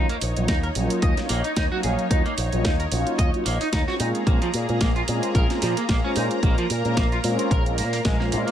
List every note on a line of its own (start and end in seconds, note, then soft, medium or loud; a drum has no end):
0.00 3.96 D#4 medium
0.00 3.96 C#5 medium
0.09 0.16 A#3 medium
0.09 closed hi-hat soft
0.21 0.33 A#1 medium
0.21 open hi-hat loud
0.36 0.46 A#1 medium
0.36 0.53 F#3 medium
0.36 0.53 A#3 medium
0.36 0.53 C#4 medium
0.36 0.54 F4 medium
0.36 closed hi-hat soft
0.48 0.69 D#2 medium
0.48 0.56 D#4 medium
0.48 kick loud
0.48 snare loud
0.48 closed hi-hat medium
0.63 0.67 A#4 medium
0.63 closed hi-hat soft
0.75 0.87 A#1 medium
0.75 1.14 F#3 medium
0.75 1.14 A#3 medium
0.75 1.14 C#4 medium
0.75 1.14 F4 medium
0.75 open hi-hat loud
0.90 closed hi-hat medium
1.02 1.14 D#2 medium
1.02 1.14 D#5 medium
1.02 kick loud
1.02 closed hi-hat medium
1.17 1.27 F#3 medium
1.17 1.28 A#3 medium
1.17 1.28 C#4 medium
1.17 1.28 F4 medium
1.17 snare soft
1.17 closed hi-hat soft
1.29 1.41 A#1 medium
1.29 1.41 A#3 loud
1.29 open hi-hat loud
1.44 1.51 D#4 medium
1.44 closed hi-hat soft
1.56 1.68 D#2 medium
1.56 1.64 D#4 medium
1.56 kick loud
1.56 snare loud
1.56 closed hi-hat medium
1.71 2.08 F#3 medium
1.71 2.08 A#3 medium
1.71 2.08 C#4 medium
1.71 1.78 F#4 medium
1.71 2.08 F5 medium
1.83 1.95 A#1 medium
1.83 1.91 G#4 medium
1.83 open hi-hat loud
1.99 closed hi-hat soft
2.11 2.22 D#2 medium
2.11 2.23 F#3 medium
2.11 2.23 A#3 medium
2.11 2.23 C#4 medium
2.11 2.22 D#4 medium
2.11 2.24 F4 medium
2.11 kick loud
2.11 closed hi-hat medium
2.26 2.32 A#3 loud
2.26 closed hi-hat soft
2.38 2.49 A#1 medium
2.38 open hi-hat loud
2.52 2.62 A#1 medium
2.52 2.69 F#3 medium
2.52 2.70 A#3 medium
2.52 2.70 C#4 medium
2.52 2.70 F4 medium
2.52 closed hi-hat soft
2.64 2.86 D#2 medium
2.64 2.72 D#4 medium
2.64 kick loud
2.64 snare loud
2.64 closed hi-hat medium
2.80 2.83 A#4 medium
2.80 closed hi-hat soft
2.91 3.03 A#1 medium
2.91 3.30 F#3 medium
2.91 3.30 A#3 medium
2.91 3.30 C#4 medium
2.91 3.30 F4 medium
2.91 open hi-hat loud
3.07 closed hi-hat soft
3.18 3.30 D#2 medium
3.18 3.30 D#5 medium
3.18 kick loud
3.18 closed hi-hat medium
3.33 3.44 F#3 medium
3.33 3.44 A#3 medium
3.33 3.44 C#4 medium
3.33 3.44 F4 medium
3.33 closed hi-hat soft
3.46 3.57 A#1 medium
3.46 3.57 A#3 loud
3.46 open hi-hat loud
3.61 3.67 D#4 medium
3.61 muted picked electric bass stroke soft
3.61 open hi-hat medium
3.73 3.84 D#2 medium
3.73 3.80 D#4 medium
3.73 kick loud
3.73 snare loud
3.73 closed hi-hat medium
3.87 4.24 G#3 medium
3.87 4.24 C4 medium
3.87 4.24 C#4 medium
3.87 4.24 F4 medium
3.87 3.94 F#4 loud
3.87 snare soft
4.00 4.11 A#2 medium
4.00 8.51 A#3 medium
4.00 4.07 D#4 medium
4.00 6.14 G#4 medium
4.00 8.51 A#5 medium
4.00 open hi-hat loud
4.15 closed hi-hat soft
4.26 4.38 A#1 medium
4.26 4.39 G#3 medium
4.26 4.38 A#3 medium
4.26 4.39 C4 medium
4.26 4.40 C#4 medium
4.26 4.40 F4 loud
4.26 kick loud
4.26 closed hi-hat medium
4.42 4.48 F3 loud
4.42 closed hi-hat soft
4.54 4.65 A#2 medium
4.54 open hi-hat loud
4.69 4.78 A#2 medium
4.69 4.86 G#3 medium
4.69 4.86 C4 medium
4.69 4.86 C#4 medium
4.69 4.86 F4 medium
4.69 closed hi-hat soft
4.81 5.02 A#1 medium
4.81 4.88 A#3 medium
4.81 kick loud
4.81 snare loud
4.81 closed hi-hat medium
4.96 5.00 F4 medium
4.96 closed hi-hat soft
5.07 5.19 A#2 loud
5.07 5.46 G#3 medium
5.07 5.46 C4 medium
5.07 5.46 C#4 medium
5.07 5.47 F4 medium
5.07 open hi-hat loud
5.23 closed hi-hat soft
5.35 5.46 A#1 medium
5.35 5.46 A#4 medium
5.35 kick loud
5.35 closed hi-hat medium
5.49 5.60 G#3 medium
5.49 5.60 C4 medium
5.49 5.60 C#4 medium
5.49 5.60 F4 medium
5.49 snare soft
5.49 closed hi-hat soft
5.62 5.74 A#2 medium
5.62 5.73 F3 medium
5.62 open hi-hat loud
5.77 5.83 A#3 medium
5.77 closed hi-hat soft
5.89 6.00 A#1 medium
5.89 5.97 A#3 medium
5.89 kick loud
5.89 snare loud
5.89 closed hi-hat medium
6.04 6.40 G#3 medium
6.04 6.40 C#4 medium
6.04 6.10 C#4 loud
6.04 6.41 F4 medium
6.04 6.40 C5 medium
6.16 6.27 A#2 medium
6.16 6.24 D#4 medium
6.16 8.51 A#4 medium
6.16 open hi-hat loud
6.31 closed hi-hat soft
6.42 6.54 A#1 loud
6.42 6.55 G#3 medium
6.42 6.55 A#3 medium
6.42 6.55 C4 medium
6.42 6.56 C#4 medium
6.42 6.56 F4 medium
6.42 kick loud
6.42 closed hi-hat medium
6.58 6.64 F3 loud
6.58 closed hi-hat soft
6.70 6.81 A#2 medium
6.70 open hi-hat loud
6.84 6.94 A#2 medium
6.84 7.02 G#3 medium
6.84 7.02 C4 medium
6.84 7.02 C#4 medium
6.84 7.02 F4 medium
6.84 closed hi-hat soft
6.97 7.18 A#1 medium
6.97 7.05 A#3 loud
6.97 kick loud
6.97 snare loud
6.97 closed hi-hat medium
7.12 7.16 F4 medium
7.12 closed hi-hat soft
7.24 7.35 A#2 medium
7.24 7.62 G#3 medium
7.24 7.63 C4 medium
7.24 7.63 C#4 medium
7.24 7.63 F4 medium
7.24 open hi-hat loud
7.39 closed hi-hat soft
7.51 7.80 A#1 medium
7.51 7.63 A#4 medium
7.51 kick loud
7.51 closed hi-hat medium
7.66 7.76 G#3 medium
7.66 7.76 C4 medium
7.66 7.76 C#4 medium
7.66 7.77 F4 medium
7.66 closed hi-hat soft
7.78 7.99 A#2 medium
7.78 7.90 A#3 medium
7.78 open hi-hat loud
7.93 7.97 A#3 medium
7.93 open hi-hat medium
8.05 8.34 A#1 medium
8.05 8.16 G#3 medium
8.05 kick loud
8.05 snare loud
8.05 closed hi-hat medium
8.20 8.51 G#3 medium
8.20 8.24 A#3 medium
8.20 8.51 C4 medium
8.20 8.51 C#4 medium
8.20 8.51 F4 medium
8.20 snare soft
8.32 8.43 A#2 medium
8.32 8.40 A#3 medium
8.32 open hi-hat loud
8.47 8.51 A#3 loud
8.47 closed hi-hat soft